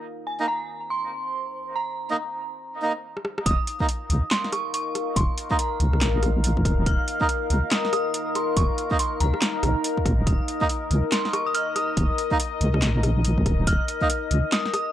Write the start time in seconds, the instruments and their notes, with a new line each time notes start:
Already playing: ambient pad D#4 F5
0.05 ambient pad C5
0.27 synth bell G#5
0.40 melodica A#3 D#4 D#5
0.48 synth bell A#5
0.90 synth bell C6
1.76 synth bell A#5
2.10 melodica A#3 D#4 D#5
2.82 melodica A#3 D#4 D#5
3.17 cross-stick
3.25 cross-stick
3.38 cross-stick
3.46 wobble bass D#1, ambient pad D#4 A#4 F5, synth bell D#6, kick, closed hi-hat
3.67 closed hi-hat
3.80 melodica A#3 D#4 D#5, kick
3.89 closed hi-hat
4.10 wobble bass C#2, closed hi-hat
4.31 synth bell C6, snare, clap, closed hi-hat
4.44 snare
4.52 synth bell C#6, cross-stick, closed hi-hat
4.74 synth bell C#6, closed hi-hat
4.95 cross-stick, closed hi-hat
5.16 wobble bass D#1, synth bell C6, kick, closed hi-hat
5.38 closed hi-hat
5.51 melodica A#3 D#4 D#5, kick
5.59 synth bell A#5, closed hi-hat
5.80 wobble bass C#2, closed hi-hat
5.93 cross-stick
6.01 wobble bass A#1, snare, clap, closed hi-hat
6.23 cross-stick, closed hi-hat
6.44 closed hi-hat
6.57 kick
6.65 wobble bass D#1, kick, cross-stick, closed hi-hat
6.86 wobble bass D#1, synth bell F6, kick, closed hi-hat
7.08 closed hi-hat
7.21 melodica A#3 D#4 D#5, kick
7.29 closed hi-hat
7.50 wobble bass C#2, closed hi-hat
7.71 synth bell D#6, snare, clap, closed hi-hat
7.85 snare
7.93 synth bell D#6, cross-stick, closed hi-hat
8.14 closed hi-hat
8.35 synth bell C6, cross-stick, closed hi-hat
8.57 wobble bass D#1, synth bell C#6, kick, closed hi-hat
8.78 closed hi-hat
8.91 melodica A#3 D#4 D#5, kick
8.99 synth bell C6, closed hi-hat
9.20 wobble bass C#2, synth bell A#5, closed hi-hat
9.34 cross-stick
9.42 snare, clap, closed hi-hat
9.63 wobble bass A#1, cross-stick, closed hi-hat
9.84 closed hi-hat
9.97 kick
10.06 wobble bass A#1, kick, cross-stick, closed hi-hat
10.19 wobble bass D#1
10.27 wobble bass D#1, ambient pad D#5, synth bell D#6, kick, closed hi-hat
10.48 closed hi-hat
10.61 melodica A#3 D#4 D#5, kick
10.69 closed hi-hat
10.91 wobble bass C#2, closed hi-hat
11.12 synth bell C6, snare, clap, closed hi-hat
11.25 snare
11.33 synth bell C#6, cross-stick, closed hi-hat
11.46 synth bell D#6
11.54 synth bell F6, closed hi-hat
11.76 synth bell D#6, cross-stick, closed hi-hat
11.97 wobble bass D#1, kick, closed hi-hat
12.18 closed hi-hat
12.31 melodica A#3 D#4 D#5, kick
12.40 closed hi-hat
12.61 wobble bass C#2, closed hi-hat
12.74 cross-stick
12.82 wobble bass A#1, snare, clap, closed hi-hat
13.03 cross-stick, closed hi-hat
13.25 closed hi-hat
13.38 kick
13.46 wobble bass D#1, kick, cross-stick, closed hi-hat
13.67 wobble bass D#1, synth bell F6, kick, closed hi-hat
13.88 closed hi-hat
14.02 melodica A#3 D#4 D#5, kick
14.10 closed hi-hat
14.31 wobble bass C#2, closed hi-hat
14.52 synth bell D#6, snare, clap, closed hi-hat
14.66 snare
14.74 synth bell D#6, cross-stick, closed hi-hat